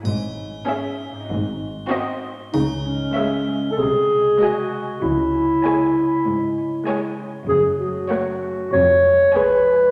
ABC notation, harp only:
X:1
M:4/4
L:1/8
Q:1/4=97
K:C#m
V:1 name="Harp"
[G,,CEG]4 [G,,^B,DF]4 | C, G, G G, ^B,, G, G G, | C, C G C G, C G C | F,, A, c A, z G, c G, |]